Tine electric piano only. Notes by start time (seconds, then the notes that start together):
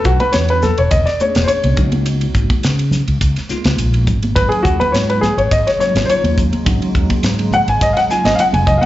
Already playing: A3 B3 C#4 D4 F#4
1.20 A3 B3 C#4 D4 G#4
1.76 G#3 A#3 B3 D#4 F#4
3.49 G#3 A#3 B3 D#4 F4
4.36 F#3 A#3 C#4 D#4 F4
5.79 F#3 A#3 C#4 D#4 F4
6.65 F#3 A#3 C#4 D#4 F#4
8.09 F#3 A#3 C#4 D#4 F4